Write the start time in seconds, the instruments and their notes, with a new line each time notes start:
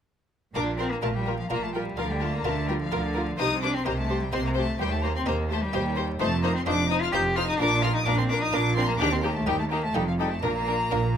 0.55 double bass section A#1, harpsichord A#2, cello section A#2, cello D4, viola section F4, violin section A#4 D6
0.78 cello C4, viola section F4, violin section A#4 C6
0.91 cello A#3, violin section A#5
1.02 double bass section A#1, harpsichord A#2 D4 F4 A#4, cello section A#2, cello A3, viola section F4, violin section A#4 A5
1.14 cello G3, violin section G5
1.25 viola section F4, violin section A#4
1.38 cello F3, violin section F5
1.49 double bass section A#1, harpsichord A#2 D4 F4 A#4, cello section A#2, cello A#3, viola section F4, violin section A#4 A#5
1.62 cello A3, violin section A5
1.73 cello G3, viola section F4, violin section A#4 G5
1.96 double bass section D2, harpsichord D3, cello section D3, cello F3, viola section F4, violin section A#4 F5
2.09 cello G3, violin section G5
2.20 cello A3, viola section F4, violin section A#4 A5
2.33 cello A#3, violin section A#5
2.44 double bass section D2, harpsichord D3 D4 F4 A#4, cello section D3, cello A3, viola section F4, violin section A#4 A5
2.67 cello G3, viola section F4, violin section A#4 G5
2.79 cello F3, violin section F5
2.91 double bass section D2, harpsichord D3 D4 F4 A#4, cello section D3, viola section F4, violin section A#4
3.14 viola section F4, violin section A#4
3.38 double bass section C2, harpsichord C3, cello section C3, cello D#4, viola section G4, violin section C5 D#6
3.62 cello D4, viola section G4, violin section C5 D6
3.74 cello C4, violin section C6
3.85 double bass section C2, harpsichord C3 D#4 G4 C5, cello section C3, cello A#3, viola section G4, violin section C5 A#5
3.98 cello A3, violin section A5
4.08 viola section G4, violin section C5
4.21 cello G3, violin section G5
4.32 double bass section C2, harpsichord C3 D#4 G4 C5, cello section C3, cello C4, viola section G4, violin section C5 C6
4.44 cello A#3, violin section A#5
4.56 cello A3, viola section G4, violin section C5 A5
4.79 harpsichord D#2, cello section D#2, double bass section D#2, cello G3, viola section G4, violin section C5 G5
4.91 cello A3, violin section A5
5.03 cello A#3, viola section G4, violin section C5 A#5
5.15 cello C4, violin section C6
5.26 harpsichord D#2 D#4 G4 C5, double bass section D#2, cello section D#2, cello A#3, viola section G4, violin section C5 A#5
5.49 cello A3, viola section G4, violin section C5 A5
5.61 cello G3, violin section G5
5.73 cello section D#2, double bass section D#2, harpsichord D#2 D#4 G4 C5, viola section G4, violin section C5
5.96 viola section G4, violin section C5
6.19 double bass section F1, harpsichord F2, cello section F2, cello A3, viola section D#4, violin section C5 A5
6.42 cello A#3, viola section D#4, violin section C5 A#5
6.54 cello C4, violin section C6
6.65 double bass section F1, harpsichord F2 D#4 F4 C5, cello section F2, cello D4, viola section D#4, violin section C5 D6
6.89 cello D#4, viola section D#4, violin section C5 D#6
7.00 cello F4, violin section F6
7.12 double bass section F1, harpsichord F2 D#4 F4 C5, cello section F2, viola section D#4, cello G4, violin section C5 G6
7.35 viola section D#4, cello F4, violin section C5 F6
7.47 cello D#4, violin section D#6
7.59 double bass section A#1, cello section A#2, harpsichord A#2, cello D4, viola section D4, violin section A#4 D6
7.82 viola section D4, cello F4, violin section A#4 F6
7.94 cello D#4, violin section D#6
8.06 double bass section A#1, harpsichord A#2 D4 F4 A#4, cello section A#2, cello D4, viola section D4, violin section A#4 D6
8.18 cello C4, violin section C6
8.29 viola section D4, cello D4, violin section A#4 D6
8.42 cello D#4, violin section D#6
8.52 double bass section A#1, cello section A#2, harpsichord A#2 D4 F4 A#4, viola section D4, cello D4, violin section A#4 D6
8.76 cello C4, viola section D4, violin section A#4 C6
8.87 cello A#3, violin section A#5
8.99 double bass section D#2, harpsichord D#2, cello section D#2, cello D4, viola section D#4, violin section G4 D6
9.11 cello C4, violin section C6
9.22 cello A#3, viola section D#4, violin section G4 A#5
9.34 cello A3, violin section A5
9.46 double bass section D#2, harpsichord D#2 D#4 G4 A#4, cello section D#2, cello G3, viola section D#4, violin section G4 G5
9.58 cello A3, violin section A5
9.70 cello A#3, viola section D#4, violin section G4 A#5
9.83 cello A3, violin section A5
9.94 double bass section F1, cello section F2, harpsichord F2 D#4 F4 A4, cello G3, viola section D#4, violin section A4 G5
10.07 cello F3, violin section F5
10.18 cello G3, viola section D#4, violin section A4 G5
10.30 cello A3, violin section A5
10.42 double bass section A#1, cello section A#2, harpsichord A#2, cello A#3, viola section D4, violin section A#4 A#5
10.67 viola section D4, violin section A#4
10.91 double bass section A#1, cello section A#2, harpsichord A#2 D4 F4 A#4, viola section D4, violin section A#4